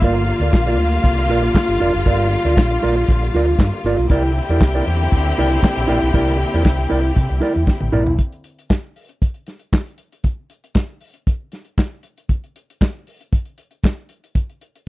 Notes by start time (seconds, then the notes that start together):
Already playing: A#3
0.01 G1 D3 G3 F4 A#4 D5 F5, kick, closed hi-hat
0.16 muted clean electric guitar stroke, closed hi-hat
0.28 muted clean electric guitar stroke, closed hi-hat
0.40 D2 F4 A#4 D5, closed hi-hat
0.53 A#1, muted clean electric guitar stroke, kick, snare, clap
0.66 F4 A#4 D5, closed hi-hat
0.78 D2, muted clean electric guitar stroke, open hi-hat
0.91 muted clean electric guitar stroke, closed hi-hat
1.04 C2, kick, closed hi-hat
1.19 muted clean electric guitar stroke
1.28 A#1 F4 A#4 D5, closed hi-hat
1.42 muted clean electric guitar stroke, closed hi-hat
1.55 muted clean electric guitar stroke, kick, snare, clap
1.68 G1, muted clean electric guitar stroke, closed hi-hat
1.80 F1 F4 A#4 D5, closed hi-hat
1.94 F#1, muted clean electric guitar stroke, closed hi-hat
2.06 G1 F4 A#4 D5, kick, closed hi-hat
2.21 closed hi-hat
2.30 muted clean electric guitar stroke, closed hi-hat
2.45 D2 F4 A#4 D5, closed hi-hat
2.57 A#1, kick, snare, clap
2.71 muted clean electric guitar stroke
2.83 A#1 F4 A#4 D5, open hi-hat
2.97 muted clean electric guitar stroke, closed hi-hat
3.09 A#1, muted clean electric guitar stroke, kick, closed hi-hat
3.22 muted clean electric guitar stroke, closed hi-hat
3.34 D2 F4 A#4 D5, snare, closed hi-hat
3.46 muted clean electric guitar stroke, closed hi-hat
3.59 G2, muted clean electric guitar stroke, kick, snare, clap
3.72 muted clean electric guitar stroke, closed hi-hat
3.84 G1 F4 A#4 D5, closed hi-hat
3.98 B1, muted clean electric guitar stroke, closed hi-hat
4.09 C2 D3 A#3 C4 E4 G4 A#4 D5 G5, kick, closed hi-hat
4.24 muted clean electric guitar stroke, closed hi-hat
4.36 muted clean electric guitar stroke, closed hi-hat
4.49 E2 E4 A#4 D5, closed hi-hat
4.61 C2, muted clean electric guitar stroke, kick, snare, clap
4.75 E4 A#4 D5
4.87 E2, muted clean electric guitar stroke, open hi-hat
4.99 muted clean electric guitar stroke, closed hi-hat
5.12 D2, kick, closed hi-hat
5.27 muted clean electric guitar stroke
5.37 C2 E4 A#4 D5, closed hi-hat
5.50 muted clean electric guitar stroke, closed hi-hat
5.63 muted clean electric guitar stroke, kick, snare, clap
5.76 A#1, muted clean electric guitar stroke, closed hi-hat
5.88 A#1 E4 A#4 D5, closed hi-hat
6.02 B1, muted clean electric guitar stroke, closed hi-hat
6.14 C2 E4 A#4 D5, kick, closed hi-hat
6.28 closed hi-hat
6.39 muted clean electric guitar stroke, closed hi-hat
6.54 E2 E4 A#4 D5, closed hi-hat
6.65 C2, muted clean electric guitar stroke, kick, snare, clap
6.78 muted clean electric guitar stroke, closed hi-hat
6.90 C2 E4 A#4 D5, open hi-hat
7.02 muted clean electric guitar stroke, closed hi-hat
7.16 C3, muted clean electric guitar stroke, kick, closed hi-hat
7.29 C2, muted clean electric guitar stroke, closed hi-hat
7.41 E4 A#4 D5, snare, closed hi-hat
7.55 E2, muted clean electric guitar stroke, closed hi-hat
7.67 muted clean electric guitar stroke, kick, snare
7.81 A1, muted clean electric guitar stroke, high tom
7.92 A#1 E4 A#4 D5, mid tom
8.06 B1, muted clean electric guitar stroke, floor tom
8.19 kick, closed hi-hat
8.32 closed hi-hat
8.44 closed hi-hat
8.59 closed hi-hat
8.70 kick, snare, clap
8.96 open hi-hat
9.09 closed hi-hat
9.22 kick, closed hi-hat
9.34 closed hi-hat
9.47 snare, closed hi-hat
9.59 closed hi-hat
9.73 kick, snare, clap
9.86 closed hi-hat
9.98 closed hi-hat
10.12 closed hi-hat
10.24 kick, closed hi-hat
10.50 closed hi-hat
10.64 closed hi-hat
10.75 kick, snare, clap
11.01 open hi-hat
11.14 closed hi-hat
11.27 kick, closed hi-hat
11.52 snare, closed hi-hat
11.65 closed hi-hat
11.78 kick, snare, clap
12.03 closed hi-hat
12.18 closed hi-hat
12.29 kick, closed hi-hat
12.44 closed hi-hat
12.56 closed hi-hat
12.70 closed hi-hat
12.81 kick, snare, clap
13.07 open hi-hat
13.21 closed hi-hat
13.33 kick, closed hi-hat
13.46 closed hi-hat
13.58 closed hi-hat
13.71 closed hi-hat
13.84 kick, snare, clap
14.09 closed hi-hat
14.24 closed hi-hat
14.35 kick, closed hi-hat
14.50 closed hi-hat
14.61 closed hi-hat
14.76 closed hi-hat